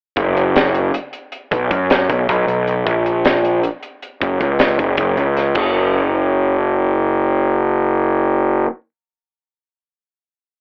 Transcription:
0.17 picked electric bass F#1, kick, closed hi-hat
0.37 closed hi-hat
0.56 snare, closed hi-hat
0.74 closed hi-hat
0.94 closed hi-hat
1.13 closed hi-hat
1.32 closed hi-hat
1.51 picked electric bass B1, kick, closed hi-hat
1.71 picked electric bass F#2, kick, closed hi-hat
1.90 snare, closed hi-hat
2.09 picked electric bass B1, kick, closed hi-hat
2.29 picked electric bass B1, kick, closed hi-hat
2.47 picked electric bass B1, closed hi-hat
2.67 closed hi-hat
2.87 picked electric bass A#1, kick, closed hi-hat
3.06 closed hi-hat
3.25 snare, closed hi-hat
3.45 closed hi-hat
3.63 closed hi-hat
3.83 closed hi-hat
4.02 closed hi-hat
4.21 picked electric bass F#1, kick, closed hi-hat
4.40 picked electric bass C#2, kick, closed hi-hat
4.59 snare, closed hi-hat
4.79 picked electric bass F#1, kick, closed hi-hat
4.97 picked electric bass F#1, kick, closed hi-hat
5.17 picked electric bass C#2, closed hi-hat
5.37 snare, closed hi-hat
5.55 picked electric bass F#1, kick, crash

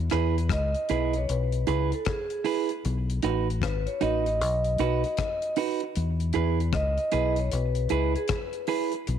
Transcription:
Already playing: fingered electric bass E2
0.10 fingered electric bass E2, clean electric guitar E4 G#4 B4, cross-stick, closed hi-hat
0.38 closed hi-hat
0.49 fingered electric bass C#2, vibraphone D#5, kick, cross-stick, closed hi-hat
0.74 closed hi-hat
0.89 fingered electric bass B1, clean electric guitar E4 G#4 B4, closed hi-hat
1.13 vibraphone C#5, closed hi-hat
1.29 fingered electric bass B1, vibraphone B4, closed hi-hat
1.52 closed hi-hat
1.67 fingered electric bass C#2, clean electric guitar E4 G#4 B4, closed hi-hat
1.92 vibraphone A4, muted clean electric guitar stroke, closed hi-hat
2.05 vibraphone G#4, kick, cross-stick, closed hi-hat
2.30 closed hi-hat
2.44 clean electric guitar E4 G#4 B4, open hi-hat
2.69 closed hi-hat
2.85 fingered electric bass B1, closed hi-hat
3.10 closed hi-hat
3.22 fingered electric bass A1, clean electric guitar D#4 F#4 B4, closed hi-hat
3.50 closed hi-hat
3.62 fingered electric bass G#1, vibraphone B4, kick, cross-stick, closed hi-hat
3.87 vibraphone C#5, closed hi-hat
4.01 fingered electric bass A1, clean electric guitar D#4 F#4 B4, vibraphone D#5, closed hi-hat
4.26 closed hi-hat
4.41 fingered electric bass B1, closed hi-hat
4.64 closed hi-hat
4.78 fingered electric bass B1, clean electric guitar D#4 F#4 B4, closed hi-hat
5.04 muted clean electric guitar stroke, closed hi-hat
5.17 kick, cross-stick, closed hi-hat
5.42 closed hi-hat
5.56 clean electric guitar D#4 F#4 B4, open hi-hat
5.80 closed hi-hat
5.96 fingered electric bass E2, closed hi-hat
6.20 closed hi-hat
6.33 fingered electric bass E2, clean electric guitar E4 G#4 B4, closed hi-hat
6.60 closed hi-hat
6.73 fingered electric bass C#2, vibraphone D#5, kick, cross-stick, closed hi-hat
6.98 closed hi-hat
7.12 fingered electric bass B1, clean electric guitar E4 G#4 B4, closed hi-hat
7.36 vibraphone C#5, closed hi-hat
7.52 fingered electric bass B1, vibraphone B4, closed hi-hat
7.75 closed hi-hat
7.89 fingered electric bass C#2, clean electric guitar E4 G#4 B4, closed hi-hat
8.15 vibraphone G#4, muted clean electric guitar stroke, closed hi-hat
8.28 kick, cross-stick, closed hi-hat
8.32 vibraphone B4
8.53 closed hi-hat
8.67 clean electric guitar E4 G#4 B4, open hi-hat
8.92 closed hi-hat
9.07 fingered electric bass B1, closed hi-hat

